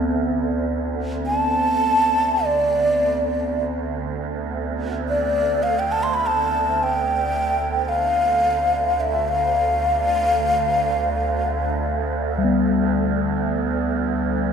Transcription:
Already playing: D2 B3 C4
1.26 A5
2.44 D5
3.82 D2
5.09 D5
5.63 F5
5.79 G5
5.92 A5
6.03 C6
6.14 B5
6.26 A5
6.83 G5
7.89 F5
9.00 E5
9.28 F5
12.38 G3
12.44 B3

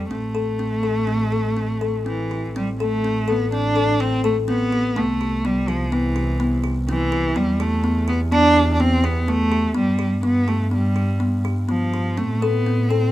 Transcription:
Already playing: F2
0.10 A1 A3 C4
0.35 A4
0.59 C4
0.83 A4
1.07 C4
1.32 A4
1.57 C4
1.81 A4
2.06 E3 C4
2.31 G4
2.56 A1 G3 C4
2.80 A3 A4
3.04 C4
3.28 B3 A4
3.52 C4 D4
3.76 A4
4.00 C4
4.24 A3 A4
4.48 B3 C4
4.72 G4
4.96 C2 A3 B3
5.21 G4
5.45 G3 B3
5.68 F3 G4
5.92 E3 B3
6.16 G4
6.40 B3
6.64 G4
6.89 E3 C4
7.12 G4
7.36 E2 G3 B3
7.60 A3 G4
7.84 B3
8.08 B3 G4
8.32 B3 D4
8.56 G4
8.73 D4
8.80 B3 C4
9.04 B3 G4
9.28 A3 B3
9.52 G4
9.74 G2 G3 B3
9.99 G4
10.23 B3
10.48 A3 G4
10.71 G3 B3
10.96 G4
11.20 B3
11.45 G4
11.69 F3 B3
11.94 G4
12.17 A2 A3 C4
12.41 B3 A4
12.66 C4
12.89 C4 A4

